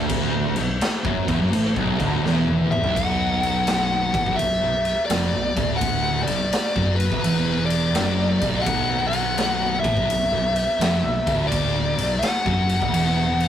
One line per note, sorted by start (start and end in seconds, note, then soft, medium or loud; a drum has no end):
0.00 0.52 D1 medium
0.00 0.55 D2 loud
0.09 kick loud
0.09 crash medium
0.56 0.80 B0 medium
0.56 0.77 B1 medium
0.56 crash medium
0.81 snare loud
0.81 crash medium
1.05 1.26 F#1 medium
1.05 1.26 F#2 loud
1.05 kick loud
1.28 1.39 E1 medium
1.28 1.40 E2 loud
1.28 kick loud
1.28 crash medium
1.40 1.51 F#1 medium
1.40 1.53 F#2 medium
1.52 1.74 A1 medium
1.52 1.75 A2 loud
1.52 crash medium
1.76 1.98 B0 medium
1.76 1.98 B1 loud
1.76 kick loud
1.99 2.22 D1 loud
1.99 2.24 D2 loud
1.99 kick medium
1.99 crash medium
2.23 2.78 E1 loud
2.23 2.83 E2 loud
2.23 snare medium
2.48 high tom medium
2.71 2.94 E5 medium
2.71 mid tom loud
2.82 2.94 B0 loud
2.82 2.95 B1 loud
2.82 floor tom loud
2.95 4.09 B0 medium
2.95 4.13 B1 loud
2.95 4.43 F#5 medium
2.95 kick loud
2.95 ride medium
3.43 ride medium
3.67 snare loud
3.67 ride medium
4.14 4.25 A1 medium
4.14 4.25 A2 loud
4.14 kick loud
4.14 ride medium
4.26 4.38 B0 medium
4.26 4.38 B1 medium
4.26 kick loud
4.36 4.60 B0 medium
4.36 4.60 B1 medium
4.36 5.05 E5 medium
4.36 ride medium
4.62 4.95 B0 medium
4.62 4.92 B1 medium
4.85 ride medium
5.06 5.77 D5 medium
5.10 5.31 F1 loud
5.10 5.32 F2 loud
5.10 snare loud
5.10 ride medium
5.33 5.55 B0 medium
5.33 5.56 B1 medium
5.56 6.24 D1 loud
5.56 6.27 D2 loud
5.56 kick loud
5.56 ride medium
5.77 6.22 F#5 medium
5.81 kick loud
5.81 ride loud
6.23 6.96 D5 loud
6.27 6.51 B0 medium
6.27 6.48 B1 medium
6.27 ride medium
6.53 snare loud
6.53 ride medium
6.76 7.09 F#1 medium
6.76 7.11 F#2 medium
6.76 kick loud
6.96 7.65 B4 medium
7.00 ride medium
7.12 7.23 D1 medium
7.12 7.24 D2 medium
7.12 kick loud
7.24 7.92 E1 medium
7.24 7.95 E2 loud
7.24 ride loud
7.66 8.67 D5 medium
7.70 ride medium
7.95 8.38 F#1 loud
7.95 8.41 F#2 loud
7.95 snare loud
7.95 ride loud
8.42 8.65 B0 loud
8.42 8.66 B1 loud
8.42 kick loud
8.42 ride medium
8.61 9.06 F#5 loud
8.66 9.80 B0 medium
8.66 9.83 B1 loud
8.66 kick loud
8.66 ride loud
9.08 9.78 F#5 loud
9.13 ride medium
9.38 snare loud
9.38 ride medium
9.80 11.54 E5 medium
9.84 9.96 A1 medium
9.84 9.96 A2 loud
9.84 kick loud
9.84 ride medium
9.96 10.08 B0 medium
9.96 10.09 B1 medium
9.96 kick loud
10.09 10.31 B0 medium
10.09 10.32 B1 medium
10.09 ride medium
10.31 10.65 B0 medium
10.31 10.63 B1 medium
10.56 ride medium
10.79 11.01 F1 loud
10.79 11.03 F2 loud
10.79 snare loud
10.79 ride medium
11.03 11.25 B0 medium
11.03 11.26 B1 medium
11.26 11.94 D1 loud
11.26 11.96 D2 loud
11.26 kick loud
11.26 ride medium
11.47 12.23 D5 loud
11.52 kick loud
11.52 ride loud
11.98 12.21 B0 medium
11.98 12.18 B1 medium
11.98 ride medium
12.19 13.48 F#5 loud
12.19 ride medium
12.23 snare loud
12.45 12.79 F#1 medium
12.45 12.80 F#2 loud
12.45 kick loud
12.69 ride medium
12.82 12.92 D1 medium
12.82 12.95 D2 medium
12.82 kick loud
12.93 13.48 E1 medium
12.93 13.48 E2 medium
12.93 ride loud
13.40 ride medium